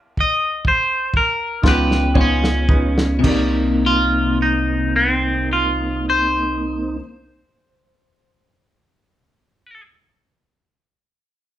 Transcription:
Already playing: F5
0.17 D#5, kick
0.65 C5, kick
1.14 A#4, kick
1.62 C#2 G#3 B3 C#4 D#4 F4 B4, kick, snare
1.67 G#3 G4 B4
1.91 snare
2.14 C#3 G#3 B3 D#4 F4 G#4 C#5, kick
2.21 C#4
2.44 snare
2.68 D#4 F4 G#4 B4, kick
2.98 snare
3.19 C3 D#4
3.23 D#3 A#3 C4 D#4 G4 A#4, kick, crash
3.28 A#3 D5
3.86 F4
4.42 D#4
4.96 C4
5.53 F4
6.10 C5

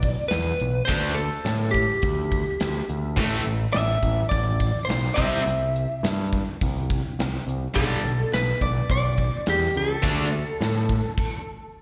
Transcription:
Already playing: B1 D5
0.02 kick, closed hi-hat
0.28 E2 B4, snare, closed hi-hat
0.59 B1, closed hi-hat
0.85 D3 C5, kick, closed hi-hat
0.90 D2 A3 D4
1.14 A4, closed hi-hat
1.45 A2, snare, closed hi-hat
1.71 G4, kick, closed hi-hat
2.02 D2, kick, closed hi-hat
2.32 kick, closed hi-hat
2.60 D2, snare, closed hi-hat
2.89 D2, closed hi-hat
3.17 A1 A2 E3 A3, kick, closed hi-hat
3.45 A1, closed hi-hat
3.73 A1 E5, snare, closed hi-hat
4.03 A1, kick, closed hi-hat
4.29 A1 D5, kick, closed hi-hat
4.60 kick, closed hi-hat
4.85 B1 C5
4.89 snare, closed hi-hat
5.14 C2 C3 G3 C4 E5, kick
5.18 closed hi-hat
5.46 C2, closed hi-hat
5.76 closed hi-hat
6.03 G2, snare, closed hi-hat
6.33 kick, closed hi-hat
6.61 C2, kick, closed hi-hat
6.90 kick, closed hi-hat
7.19 C2, snare, closed hi-hat
7.47 C2, closed hi-hat
7.75 B1 G2 D3 G3 A4, kick, closed hi-hat
8.04 B1, closed hi-hat
8.33 B1 B4, snare, closed hi-hat
8.61 B1 D5, kick, closed hi-hat
8.90 B1 D5, kick, closed hi-hat
9.17 kick, closed hi-hat
9.46 E2 G4, snare, closed hi-hat
9.74 C#2 A4, closed hi-hat
10.03 D2 D3 A3 D4, kick, closed hi-hat
10.32 closed hi-hat
10.60 A2, snare, closed hi-hat
10.89 kick, closed hi-hat
11.18 kick, crash

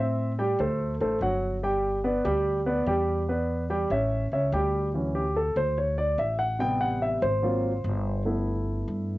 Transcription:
Already playing: A2 C4 C5 E5
0.39 G3 G4 G5
0.59 D2 A3 A4 C5
1.00 A1 A3 A4 C5
1.21 G1 F#3 F#4 F#5
1.63 G3 G4 G5
2.04 B3 B4 D5
2.25 D2 G3 G4 G5
2.66 B3 B4 D5
2.86 E2 G3 G4 G5
3.29 B3 B4 D5
3.70 G3 G4 G5
3.90 A1 C#4 C#5 E5
4.32 C#2 C#4 C#5 E5
4.52 D2 G3 G4 G5
4.94 E3 F#3 C#4
5.15 G4
5.37 A4
5.56 D2 C5
5.78 C#5
5.98 D5
6.18 A1 E5
6.39 F#5
6.59 C3 G3 B3 G5
6.81 F#5
7.02 E5
7.22 G#1 C5
7.42 F#3 A#3 C4 F4
7.84 G1
8.25 A3 B3 E4
8.88 G2

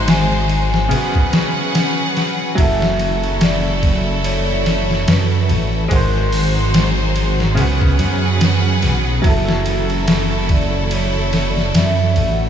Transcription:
Already playing: G#1 F#3 G#3 D#4 F#4 C5 F#5
0.08 G#5, snare, ride
0.49 ride
0.74 snare
0.89 G#1 C#3 B3 C#4 G#4 B4 F#5, ride
0.96 F#4
1.15 kick
1.33 snare, ride
1.75 snare, ride
2.17 F#5, snare, ride
2.55 F#1 F#3 E4 F#4 A4 E5, kick, ride
2.62 A4
2.82 snare
2.99 ride
3.23 ride
3.41 D5, snare, ride
3.83 kick, ride
4.24 C#5, ride
4.66 snare, ride
4.91 snare
5.08 F#2 B4, snare, ride
5.49 A1, ride
5.87 G#3 C5
5.91 G#1 G#3 D#4 F#4 A#4 C5, kick, ride
5.95 C5
6.32 F#5, open hi-hat
6.74 snare, ride
7.16 ride
7.40 snare
7.55 C#2 C#3 B3 C#4 G#4 B4 F#5, ride
7.61 F#4
7.81 kick
7.99 F#2, ride
8.41 snare, ride
8.82 B1, snare, ride
9.22 F#1 F#3 E4 F#4 A4, kick, ride
9.29 A4
9.49 snare
9.66 ride
9.90 ride
10.08 snare, ride
10.49 D5, kick, ride
10.91 C#5, ride
11.33 snare, ride
11.49 D5
11.57 snare
11.74 F#2 E5, snare, ride
12.16 A1, ride
12.32 F#5

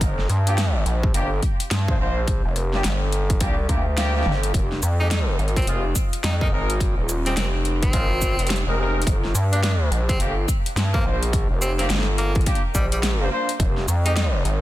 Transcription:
0.01 G1, kick, closed hi-hat
0.19 snare
0.29 G2, cross-stick, closed hi-hat
0.47 A#3 D4 F4 G4, closed hi-hat
0.58 snare, closed hi-hat
0.86 A#1, closed hi-hat
1.03 kick
1.14 G1 A#3 D4 F4 G4, closed hi-hat
1.43 kick, closed hi-hat
1.60 closed hi-hat
1.71 G2, snare, closed hi-hat
1.88 A#3 D4 F4 C5, kick
1.99 A#1 A#3 D4 F4 C5
2.27 kick, closed hi-hat
2.45 F1
2.56 cross-stick, closed hi-hat
2.73 A#3 D4 F4 G4, snare
2.84 G1, snare, closed hi-hat
3.12 closed hi-hat
3.30 kick, closed hi-hat
3.41 C2 A#3 D4 F4 G4, kick, closed hi-hat
3.69 D2 A#3 D4 F4 G4, kick, cross-stick, closed hi-hat
3.98 A#3 D4 F4 G4, snare, closed hi-hat
4.15 A#3 D4 F4 G4, snare
4.22 G1, snare, mid tom
4.32 snare
4.43 closed hi-hat
4.54 F1, kick, closed hi-hat
4.72 snare
4.83 F2, cross-stick, closed hi-hat, shaker
5.00 G#3 C4 D#4 G4
5.11 D#4, snare, closed hi-hat
5.39 G#1, closed hi-hat
5.48 closed hi-hat
5.56 C4, kick, closed hi-hat
5.62 closed hi-hat
5.67 F1 G#3 C4 D#4 F4, closed hi-hat
5.96 kick, closed hi-hat, shaker
6.13 closed hi-hat
6.24 F2 D#4, snare, closed hi-hat
6.41 G#3 C4 D#4 A#4, kick
6.52 G#1 G#3 C4 D#4 A#4
6.70 closed hi-hat
6.80 kick, closed hi-hat
6.98 D#1
7.09 cross-stick, closed hi-hat, shaker
7.26 G#3 C4 D#4 G4, snare, closed hi-hat
7.37 F1 C4, snare, closed hi-hat
7.65 closed hi-hat
7.82 C4, kick, closed hi-hat
7.93 G#1 G#3 C4 D#4 F4, kick, closed hi-hat
8.22 kick, cross-stick, closed hi-hat, shaker
8.39 F1, closed hi-hat
8.47 snare, closed hi-hat
8.50 closed hi-hat
8.56 closed hi-hat
8.67 F1 G#3 C4 D#4 A#4
8.78 G#3 C4 D#4 A#4
9.02 closed hi-hat
9.07 G1, kick, closed hi-hat
9.24 snare
9.35 G2, cross-stick, closed hi-hat, shaker
9.52 A#3 D4 F4 G4, closed hi-hat
9.63 D4, snare, closed hi-hat
9.91 A#1, closed hi-hat
10.09 C4, kick, closed hi-hat
10.20 G1 A#3 D4 F4 G4, closed hi-hat
10.48 kick, closed hi-hat, shaker
10.66 closed hi-hat
10.76 G2, snare, closed hi-hat
10.94 A#3 D4 F4 C5, kick
11.05 A#1 A#3 D4 F4 C5
11.23 closed hi-hat
11.33 kick, closed hi-hat
11.51 F1
11.62 C4, closed hi-hat, shaker
11.79 A#3 C4 D4 F4 G4, cross-stick, snare, closed hi-hat
11.90 G1, snare, closed hi-hat
11.94 snare
11.98 snare
12.03 snare
12.18 A#3, closed hi-hat
12.35 kick, closed hi-hat
12.41 closed hi-hat
12.46 A#3 D4 F4 G4, kick, closed hi-hat
12.55 closed hi-hat
12.75 A#1 G3, kick, cross-stick, closed hi-hat, shaker
12.92 G3, closed hi-hat
13.03 snare, closed hi-hat
13.21 A#3 D4 F4 C5
13.31 A#3 D4 F4 C5
13.49 closed hi-hat
13.60 F1, kick, closed hi-hat
13.77 snare
13.88 F2, cross-stick, closed hi-hat, shaker
14.05 G#3 C4 D#4 G4, closed hi-hat
14.16 D#4, snare, closed hi-hat
14.45 G#1, closed hi-hat

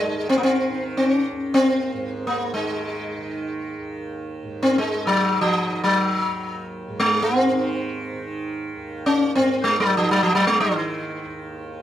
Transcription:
Already playing: D#2 G#2 D#3 G#3
0.08 D#3
0.29 C4
0.38 A#3
0.43 C4
0.69 D#3
0.97 C4
1.12 C#4
1.31 D#2
1.54 C4
1.93 G#2
2.27 A#3
2.54 D#3 G#3
3.18 D#3
3.79 D#2
4.43 G#2
4.63 C4
4.78 G#3
5.05 D#3 F#3
5.41 F3
5.67 D#3
5.84 F#3
6.28 D#2
6.88 G#2
7.00 G#3
7.23 C4
7.51 D#3
8.13 D#3
8.76 D#2
9.06 C#4
9.35 G#2 C4
9.64 G#3
9.80 F#3
9.97 D#3 F3
10.11 F#3
10.23 F3
10.35 F#3
10.47 G#3
10.60 D#3
11.24 D#2

